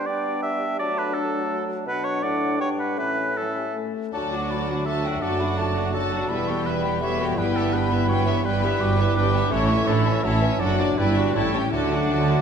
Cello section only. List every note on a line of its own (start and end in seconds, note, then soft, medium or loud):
4.13 5.19 D2 soft
5.22 6.31 F#2 soft
6.30 7.36 E2 soft
7.37 8.42 G2 medium
8.44 8.76 G2 medium
8.80 9.12 G2 medium
9.15 9.47 G2 medium
9.51 9.83 A2 medium
9.88 10.20 A2 medium
10.24 10.57 A2 medium
10.61 10.93 F#2 medium
10.98 11.31 G2 medium
11.34 11.68 A2 medium
11.72 12.07 D3 soft
12.11 12.42 D3 medium